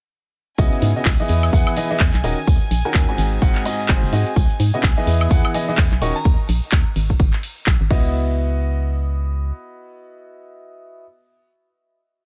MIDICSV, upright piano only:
0, 0, Header, 1, 2, 480
1, 0, Start_track
1, 0, Tempo, 472441
1, 593, Time_signature, 4, 2, 24, 8
1, 12446, End_track
2, 0, Start_track
2, 0, Title_t, "Upright piano"
2, 0, Program_c, 0, 0
2, 595, Note_on_c, 0, 49, 104
2, 595, Note_on_c, 0, 59, 95
2, 595, Note_on_c, 0, 64, 93
2, 595, Note_on_c, 0, 66, 89
2, 596, Note_on_c, 0, 75, 109
2, 919, Note_off_c, 0, 49, 0
2, 919, Note_off_c, 0, 59, 0
2, 919, Note_off_c, 0, 64, 0
2, 919, Note_off_c, 0, 66, 0
2, 919, Note_off_c, 0, 75, 0
2, 976, Note_on_c, 0, 49, 77
2, 976, Note_on_c, 0, 59, 73
2, 976, Note_on_c, 0, 64, 70
2, 976, Note_on_c, 0, 66, 67
2, 976, Note_on_c, 0, 75, 88
2, 1064, Note_off_c, 0, 49, 0
2, 1064, Note_off_c, 0, 59, 0
2, 1064, Note_off_c, 0, 64, 0
2, 1064, Note_off_c, 0, 66, 0
2, 1064, Note_off_c, 0, 75, 0
2, 1216, Note_on_c, 0, 75, 97
2, 1217, Note_on_c, 0, 52, 91
2, 1217, Note_on_c, 0, 59, 84
2, 1217, Note_on_c, 0, 64, 83
2, 1217, Note_on_c, 0, 68, 80
2, 1531, Note_off_c, 0, 52, 0
2, 1531, Note_off_c, 0, 59, 0
2, 1531, Note_off_c, 0, 64, 0
2, 1531, Note_off_c, 0, 68, 0
2, 1531, Note_off_c, 0, 75, 0
2, 1555, Note_on_c, 0, 52, 86
2, 1555, Note_on_c, 0, 59, 83
2, 1555, Note_on_c, 0, 64, 82
2, 1555, Note_on_c, 0, 68, 81
2, 1555, Note_on_c, 0, 78, 97
2, 1770, Note_off_c, 0, 59, 0
2, 1770, Note_off_c, 0, 68, 0
2, 1770, Note_off_c, 0, 78, 0
2, 1771, Note_off_c, 0, 52, 0
2, 1771, Note_off_c, 0, 64, 0
2, 1795, Note_on_c, 0, 52, 93
2, 1795, Note_on_c, 0, 59, 86
2, 1795, Note_on_c, 0, 64, 87
2, 1795, Note_on_c, 0, 68, 88
2, 1795, Note_on_c, 0, 75, 100
2, 1901, Note_off_c, 0, 59, 0
2, 1901, Note_off_c, 0, 64, 0
2, 1902, Note_off_c, 0, 52, 0
2, 1902, Note_off_c, 0, 68, 0
2, 1902, Note_off_c, 0, 75, 0
2, 1936, Note_on_c, 0, 52, 104
2, 1936, Note_on_c, 0, 59, 95
2, 1936, Note_on_c, 0, 64, 91
2, 1936, Note_on_c, 0, 68, 92
2, 1936, Note_on_c, 0, 75, 114
2, 2024, Note_off_c, 0, 52, 0
2, 2024, Note_off_c, 0, 59, 0
2, 2024, Note_off_c, 0, 64, 0
2, 2024, Note_off_c, 0, 68, 0
2, 2024, Note_off_c, 0, 75, 0
2, 2274, Note_on_c, 0, 66, 74
2, 2275, Note_on_c, 0, 51, 85
2, 2275, Note_on_c, 0, 61, 77
2, 2275, Note_on_c, 0, 70, 77
2, 2275, Note_on_c, 0, 75, 96
2, 2401, Note_off_c, 0, 51, 0
2, 2401, Note_off_c, 0, 61, 0
2, 2401, Note_off_c, 0, 66, 0
2, 2401, Note_off_c, 0, 70, 0
2, 2401, Note_off_c, 0, 75, 0
2, 2896, Note_on_c, 0, 61, 73
2, 2896, Note_on_c, 0, 66, 74
2, 2896, Note_on_c, 0, 80, 90
2, 2897, Note_on_c, 0, 51, 89
2, 2897, Note_on_c, 0, 70, 77
2, 3102, Note_off_c, 0, 51, 0
2, 3102, Note_off_c, 0, 61, 0
2, 3102, Note_off_c, 0, 66, 0
2, 3102, Note_off_c, 0, 70, 0
2, 3102, Note_off_c, 0, 80, 0
2, 3135, Note_on_c, 0, 80, 85
2, 3136, Note_on_c, 0, 44, 76
2, 3136, Note_on_c, 0, 60, 73
2, 3136, Note_on_c, 0, 66, 74
2, 3136, Note_on_c, 0, 68, 72
2, 3450, Note_off_c, 0, 44, 0
2, 3450, Note_off_c, 0, 60, 0
2, 3450, Note_off_c, 0, 66, 0
2, 3450, Note_off_c, 0, 68, 0
2, 3450, Note_off_c, 0, 80, 0
2, 3473, Note_on_c, 0, 44, 92
2, 3473, Note_on_c, 0, 60, 87
2, 3473, Note_on_c, 0, 66, 81
2, 3473, Note_on_c, 0, 68, 86
2, 3474, Note_on_c, 0, 78, 102
2, 3690, Note_off_c, 0, 44, 0
2, 3690, Note_off_c, 0, 60, 0
2, 3690, Note_off_c, 0, 66, 0
2, 3690, Note_off_c, 0, 68, 0
2, 3690, Note_off_c, 0, 78, 0
2, 3713, Note_on_c, 0, 44, 87
2, 3713, Note_on_c, 0, 60, 77
2, 3713, Note_on_c, 0, 66, 80
2, 3713, Note_on_c, 0, 68, 82
2, 3713, Note_on_c, 0, 75, 99
2, 3929, Note_off_c, 0, 44, 0
2, 3929, Note_off_c, 0, 60, 0
2, 3929, Note_off_c, 0, 68, 0
2, 3930, Note_off_c, 0, 66, 0
2, 3930, Note_off_c, 0, 75, 0
2, 3953, Note_on_c, 0, 44, 91
2, 3953, Note_on_c, 0, 60, 78
2, 3953, Note_on_c, 0, 68, 83
2, 3954, Note_on_c, 0, 66, 83
2, 3954, Note_on_c, 0, 72, 100
2, 4170, Note_off_c, 0, 44, 0
2, 4170, Note_off_c, 0, 60, 0
2, 4170, Note_off_c, 0, 66, 0
2, 4170, Note_off_c, 0, 68, 0
2, 4170, Note_off_c, 0, 72, 0
2, 4192, Note_on_c, 0, 66, 75
2, 4193, Note_on_c, 0, 60, 86
2, 4193, Note_on_c, 0, 68, 75
2, 4193, Note_on_c, 0, 75, 93
2, 4377, Note_off_c, 0, 66, 0
2, 4377, Note_off_c, 0, 68, 0
2, 4377, Note_off_c, 0, 75, 0
2, 4378, Note_off_c, 0, 60, 0
2, 4814, Note_on_c, 0, 49, 79
2, 4814, Note_on_c, 0, 59, 74
2, 4814, Note_on_c, 0, 64, 76
2, 4814, Note_on_c, 0, 66, 73
2, 4814, Note_on_c, 0, 75, 88
2, 4903, Note_off_c, 0, 49, 0
2, 4903, Note_off_c, 0, 59, 0
2, 4903, Note_off_c, 0, 64, 0
2, 4903, Note_off_c, 0, 66, 0
2, 4903, Note_off_c, 0, 75, 0
2, 5053, Note_on_c, 0, 75, 105
2, 5054, Note_on_c, 0, 52, 91
2, 5054, Note_on_c, 0, 59, 83
2, 5054, Note_on_c, 0, 64, 85
2, 5054, Note_on_c, 0, 68, 87
2, 5369, Note_off_c, 0, 52, 0
2, 5369, Note_off_c, 0, 59, 0
2, 5369, Note_off_c, 0, 64, 0
2, 5369, Note_off_c, 0, 68, 0
2, 5369, Note_off_c, 0, 75, 0
2, 5393, Note_on_c, 0, 52, 87
2, 5393, Note_on_c, 0, 59, 81
2, 5394, Note_on_c, 0, 64, 81
2, 5394, Note_on_c, 0, 68, 82
2, 5394, Note_on_c, 0, 78, 101
2, 5610, Note_off_c, 0, 52, 0
2, 5610, Note_off_c, 0, 59, 0
2, 5610, Note_off_c, 0, 64, 0
2, 5610, Note_off_c, 0, 68, 0
2, 5610, Note_off_c, 0, 78, 0
2, 5634, Note_on_c, 0, 52, 93
2, 5634, Note_on_c, 0, 59, 86
2, 5634, Note_on_c, 0, 64, 84
2, 5634, Note_on_c, 0, 68, 90
2, 5634, Note_on_c, 0, 75, 107
2, 5741, Note_off_c, 0, 52, 0
2, 5741, Note_off_c, 0, 59, 0
2, 5741, Note_off_c, 0, 64, 0
2, 5741, Note_off_c, 0, 68, 0
2, 5741, Note_off_c, 0, 75, 0
2, 5775, Note_on_c, 0, 52, 105
2, 5775, Note_on_c, 0, 59, 96
2, 5775, Note_on_c, 0, 64, 94
2, 5775, Note_on_c, 0, 68, 95
2, 5775, Note_on_c, 0, 75, 110
2, 5863, Note_off_c, 0, 52, 0
2, 5863, Note_off_c, 0, 59, 0
2, 5863, Note_off_c, 0, 64, 0
2, 5863, Note_off_c, 0, 68, 0
2, 5863, Note_off_c, 0, 75, 0
2, 6113, Note_on_c, 0, 51, 91
2, 6113, Note_on_c, 0, 61, 80
2, 6113, Note_on_c, 0, 66, 81
2, 6113, Note_on_c, 0, 70, 79
2, 6113, Note_on_c, 0, 75, 98
2, 6240, Note_off_c, 0, 51, 0
2, 6240, Note_off_c, 0, 61, 0
2, 6240, Note_off_c, 0, 66, 0
2, 6240, Note_off_c, 0, 70, 0
2, 6240, Note_off_c, 0, 75, 0
2, 8032, Note_on_c, 0, 59, 85
2, 8032, Note_on_c, 0, 66, 76
2, 8032, Note_on_c, 0, 75, 98
2, 8033, Note_on_c, 0, 64, 77
2, 11210, Note_off_c, 0, 59, 0
2, 11210, Note_off_c, 0, 66, 0
2, 11210, Note_off_c, 0, 75, 0
2, 11211, Note_off_c, 0, 64, 0
2, 12446, End_track
0, 0, End_of_file